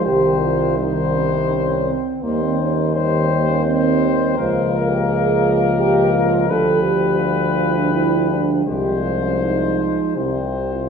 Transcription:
<<
  \new Staff \with { instrumentName = "Flugelhorn" } { \time 3/4 \key c \phrygian \tempo 4 = 83 c''4 c''4. r8 | c''4 c''4 c''4 | bes'2. | b'2. |
c''2 c''4 | }
  \new Staff \with { instrumentName = "French horn section" } { \time 3/4 \key c \phrygian g'8 f'8 ees'16 f'16 des'16 ees'16 des'8 c'8 | bes16 c'16 des'8 c'8 bes16 des'16 c'4 | c''8 bes'16 g'16 aes'4 g'8 f'8 | a'8 g'8 f'8. d'16 e'8 d'8 |
g'8 f'16 des'16 ees'4 e'16 f'16 g'16 f'16 | }
  \new Staff \with { instrumentName = "Euphonium" } { \clef bass \time 3/4 \key c \phrygian g4 g4. r8 | g4 g4 g4 | bes2. | g2. |
aes2 g4 | }
  \new Staff \with { instrumentName = "Euphonium" } { \clef bass \time 3/4 \key c \phrygian ees4 ees4. r8 | ees4 ees4 ees4 | f2.~ | f2. |
f2 c4 | }
  \new Staff \with { instrumentName = "Tuba" } { \clef bass \time 3/4 \key c \phrygian c,2~ c,8 r8 | ees,2. | des,2. | d,2. |
c,2 c,4 | }
>>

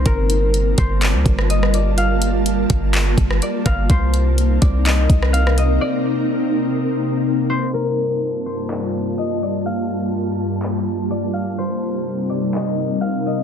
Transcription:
<<
  \new Staff \with { instrumentName = "Harp" } { \time 4/4 \key g \minor \tempo 4 = 125 bes'4. c''8 d''4 ees''8 d''8 | f''2. d''8 f''8 | c''4. d''8 ees''4 f''8 ees''8 | d''2.~ d''8 c''8 |
bes'4. c''8 d''4 ees''8 d''8 | f''2. d''8 f''8 | c''4. d''8 ees''4 f''8 ees''8 | }
  \new Staff \with { instrumentName = "Ambient pad" } { \time 4/4 \key g \minor << { <g f' bes' a''>1~ | <g f' bes' a''>1 | <c ees' bes'>1~ | <c ees' bes'>1 |
<g, bes f' a''>1~ | <g, bes f' a''>1 | <c c' ees' bes'>1 | } \\ { bes1~ | bes1 | c'1~ | c'1 |
g1~ | g1~ | g1 | } >> }
  \new Staff \with { instrumentName = "808-style bass" } { \clef bass \time 4/4 \key g \minor g,,4. g,,8. d,16 g,,4.~ | g,,4. g,,4 g,,8 r8 g,,8 | c,4. c,4 c,4. | r1 |
r1 | r1 | r1 | }
  \new DrumStaff \with { instrumentName = "Drums" } \drummode { \time 4/4 <hh bd>8 hh8 hh8 <hh bd>8 <hc hh>8 <hh bd>16 ss16 hh16 ss16 hh8 | hh8 hh8 hh8 <hh bd>8 <hc hh>8 <hh bd>16 ss16 hh8 <hh bd ss>8 | <hh bd>8 hh8 hh8 <hh bd>8 <hc hh>8 <hh bd>16 ss16 hh16 ss16 hh8 | r4 r4 r4 r4 |
r4 r4 hc4 r4 | r4 r4 hc4 r4 | r4 r4 hc4 r4 | }
>>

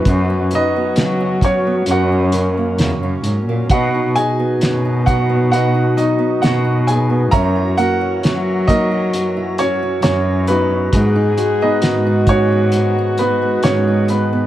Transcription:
<<
  \new Staff \with { instrumentName = "Grand piano" } { \time 4/4 \key fis \mixolydian \tempo 4 = 67 <b fis' b'>8 <dis' b' dis''>4 <cis' cis''>8 <fis' ais' cis'' fis''>4. r8 | <fis' b' dis'' fis''>8 <gis' dis'' gis''>4 <fis' fis''>8 <fis' b' dis'' fis''>8 <dis' dis''>8 <fis' fis''>8 <gis' gis''>8 | <ais' cis'' e'' ais''>8 <fis' ais' fis''>4 <dis' ais' dis''>4 <cis' cis''>8 <cis' cis''>8 <b dis' fis' b'>8~ | <b dis' fis' b'>8. <dis' b' dis''>8. <cis' fis' cis''>4 <b b'>8 <cis' cis''>8 <b b'>8 | }
  \new Staff \with { instrumentName = "French horn" } { \time 4/4 \key fis \mixolydian fis'2 cis'4. r8 | dis'1 | fis'2.~ fis'8 r8 | gis'4 fis'2. | }
  \new Staff \with { instrumentName = "Harmonium" } { \time 4/4 \key fis \mixolydian <fis cis'>1 | fis1 | cis'1 | dis'1 | }
  \new Staff \with { instrumentName = "Harmonium" } { \time 4/4 \key fis \mixolydian b2 <ais cis'>2 | <b dis'>1 | <e fis ais''>1 | <gis fis' b'>1 | }
  \new Staff \with { instrumentName = "Steel-string acoustic guitar" } { \time 4/4 \key fis \mixolydian << { r16 cis'16 fis'16 b8 cis'8 b16 r16 cis'16 ais'16 ais8 cis'8 ais16 | r16 dis'16 fis'16 b8 dis'8 b8 dis'16 fis'16 b8 dis'8 b16 | r16 e'16 fis'16 cis'4 cis'8 e'16 fis'16 cis'4~ cis'16 | r16 dis'16 fis'16 b8 dis'8 b8 dis'16 fis'16 b8 dis'8 b16 | } \\ { fis,8 fis8 cis8 fis8 fis,8 fis8 cis8 fis8 | b,8 fis8 fis,8 fis8 b,8 fis8 fis,8 fis8 | fis,8 ais8 fis,8 ais8 fis,4 fis,8. fis,16 | gis,8 gis8 dis8 gis8 gis,8 gis8 dis8 gis8 | } >> }
  \new Staff \with { instrumentName = "Cello" } { \clef bass \time 4/4 \key fis \mixolydian fis,8 r8 fis4 fis,4 e,16 fis,16 gis,16 ais,16 | b,8 r8 b,2 b,4 | fis,8 r8 fis2 fis,4 | gis,8 r8 gis,2 gis,4 | }
  \new DrumStaff \with { instrumentName = "Drums" } \drummode { \time 4/4 <hh bd>8 hh8 <hh sn>8 <hh bd>8 hh8 hh8 <hh sn>8 hh8 | <hh bd>8 hh8 <hh sn>8 <hh bd>8 hh8 hh8 <hh sn>8 hh8 | <hh bd>8 hh8 <hh sn>8 <hh bd>8 hh8 hh8 <hh sn>8 hh8 | <hh bd>8 hh8 <hh sn>8 <hh bd>8 hh8 hh8 <hh sn>8 hh8 | }
>>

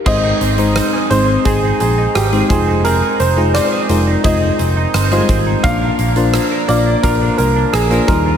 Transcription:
<<
  \new Staff \with { instrumentName = "Grand piano" } { \time 4/4 \key aes \lydian \tempo 4 = 86 ees''4. c''8 aes'8 aes'8 g'8 aes'8 | bes'8 c''8 d''4 ees''4. r8 | f''4. d''8 bes'8 bes'8 aes'8 bes'8 | }
  \new Staff \with { instrumentName = "FM electric piano" } { \time 4/4 \key aes \lydian <aes c' ees' c''>8. <aes c' ees' c''>8. <aes c' ees' c''>8 <aes c' ees' c''>4~ <aes c' ees' c''>16 <aes c' ees' c''>16 <aes ees' f' c''>8~ | <aes ees' f' c''>8. <aes ees' f' aes'>8. <aes ees' f' bes'>8 <aes ees' f' c''>4~ <aes ees' f' c''>16 <g aes ees' f' c''>8. | <bes d' d''>8. <bes d' f' c''>8. <bes d' f' f''>8 <bes d' f' d''>4~ <bes d' f' d''>16 <bes d' f' c''>16 <g ees' f' bes'>8 | }
  \new Staff \with { instrumentName = "Clean electric guitar" } { \time 4/4 \key aes \lydian <c' aes'>16 ees'16 c'16 ees'16 c'16 aes'16 c'16 ees'16 <c' aes'>16 ees'16 c'16 ees'16 c'16 aes'16 c'16 ees'16 | <c' aes'>16 ees'16 c'16 ees'16 c'16 aes'16 c'16 ees'16 <c' aes'>16 ees'16 c'16 ees'16 c'16 aes'16 c'16 ees'16 | <f bes'>16 d'16 bes16 d'16 bes16 bes'16 bes16 d'16 <f bes'>16 d'16 bes16 d'16 bes16 bes'16 f16 f'16 | }
  \new Staff \with { instrumentName = "Picked electric bass" } { \clef bass \time 4/4 \key aes \lydian aes,,8 aes,,8. r16 aes,,8 aes,,8 bes,,8 aes,,8 f,,8~ | f,,8 f,,8. r16 f,,8 f,,8 f,,8 g,,8 aes,,8 | bes,,8 bes,,8. r16 bes,,8 bes,,8 c,8 bes,,8 ees,8 | }
  \new DrumStaff \with { instrumentName = "Drums" } \drummode { \time 4/4 <cymc bd>8 hh16 hh16 <hh ss>8 hh8 <hh bd>8 hh8 <hh ss>16 hh16 <hh bd>8 | hh8 hh8 <hh ss>8 hh8 <hh bd>8 hh8 <hh ss>16 hh16 <hh bd>8 | <hh bd>8 hh16 hh16 <hh ss>8 hh8 <hh bd>8 hh8 <hh ss>16 hh16 <hh bd>8 | }
>>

